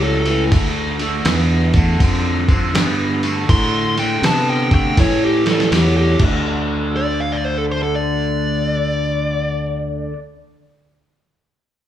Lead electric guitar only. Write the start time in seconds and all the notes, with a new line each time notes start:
0.03 A4
3.50 C6
3.99 G5
4.26 A5
4.49 G5
4.74 G5
5.00 C#5
5.24 G4
5.47 A4
5.72 G4
5.97 G4
6.97 D5
7.20 F5
7.32 D5
7.45 C5
7.58 A4
7.71 C5
7.83 A4
7.95 D5